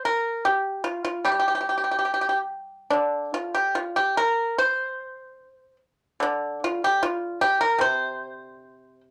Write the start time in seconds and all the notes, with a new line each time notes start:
0.05 A#4
0.45 G4
0.84 F4
1.05 F4
1.25 G3 G4
1.32 G4
1.40 G4
1.48 G4
1.55 G4
1.61 G4
1.69 G4
1.78 G4
1.84 G4
1.91 G4
1.99 G4
2.05 G4
2.14 G4
2.21 G4
2.29 G4
2.90 D3 D4
3.34 F4
3.54 G4
3.75 F4
3.96 G4
4.17 A#4
4.58 C5
6.20 D3 D4
6.64 F4
6.84 G4
7.03 F4
7.41 G4
7.61 A#4
7.79 C3 C5